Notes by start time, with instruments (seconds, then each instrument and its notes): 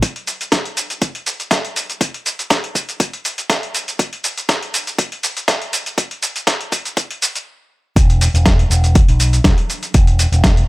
0.02 kick, closed hi-hat, shaker
0.16 closed hi-hat
0.27 open hi-hat, shaker
0.41 closed hi-hat, shaker
0.52 kick, snare, closed hi-hat, shaker
0.65 closed hi-hat
0.77 open hi-hat, shaker
0.90 closed hi-hat, shaker
1.02 kick, closed hi-hat, shaker
1.15 closed hi-hat
1.26 open hi-hat, shaker
1.40 closed hi-hat, shaker
1.51 kick, snare, closed hi-hat, shaker
1.65 closed hi-hat
1.76 open hi-hat, shaker
1.90 closed hi-hat, shaker
2.01 kick, closed hi-hat, shaker
2.14 closed hi-hat
2.26 open hi-hat, shaker
2.39 closed hi-hat, shaker
2.50 kick, snare, closed hi-hat, shaker
2.64 closed hi-hat
2.75 kick, open hi-hat, shaker
2.89 closed hi-hat, shaker
3.00 kick, closed hi-hat, shaker
3.13 closed hi-hat
3.25 open hi-hat, shaker
3.38 closed hi-hat, shaker
3.50 kick, snare, closed hi-hat, shaker
3.63 closed hi-hat
3.75 open hi-hat, shaker
3.88 closed hi-hat, shaker
3.99 kick, closed hi-hat, shaker
4.13 closed hi-hat
4.24 open hi-hat, shaker
4.38 closed hi-hat, shaker
4.49 kick, snare, closed hi-hat, shaker
4.63 closed hi-hat
4.74 open hi-hat, shaker
4.87 closed hi-hat, shaker
4.98 kick, closed hi-hat, shaker
5.12 closed hi-hat
5.23 open hi-hat, shaker
5.37 closed hi-hat, shaker
5.48 kick, snare, closed hi-hat, shaker
5.62 closed hi-hat
5.73 open hi-hat, shaker
5.86 closed hi-hat, shaker
5.98 kick, closed hi-hat, shaker
6.11 closed hi-hat
6.23 open hi-hat, shaker
6.36 closed hi-hat, shaker
6.47 kick, snare, closed hi-hat, shaker
6.61 closed hi-hat
6.72 kick, open hi-hat, shaker
6.85 closed hi-hat, shaker
6.97 kick, closed hi-hat, shaker
7.11 closed hi-hat
7.22 open hi-hat, shaker
7.35 closed hi-hat, shaker
7.96 picked electric bass E1, kick, closed hi-hat, shaker
8.10 closed hi-hat
8.21 open hi-hat, shaker
8.34 picked electric bass E1, closed hi-hat, shaker
8.46 kick, snare, closed hi-hat, shaker
8.59 closed hi-hat
8.70 picked electric bass E1, open hi-hat, shaker
8.84 closed hi-hat, shaker
8.95 kick, closed hi-hat, shaker
9.08 picked electric bass B1, closed hi-hat
9.20 open hi-hat, shaker
9.33 closed hi-hat, shaker
9.44 picked electric bass E1, kick, snare, closed hi-hat, shaker
9.58 closed hi-hat
9.70 open hi-hat, shaker
9.83 closed hi-hat, shaker
9.94 picked electric bass E1, kick, closed hi-hat, shaker
10.07 closed hi-hat
10.19 open hi-hat, shaker
10.32 picked electric bass E1, closed hi-hat, shaker
10.44 kick, snare, closed hi-hat, shaker
10.57 closed hi-hat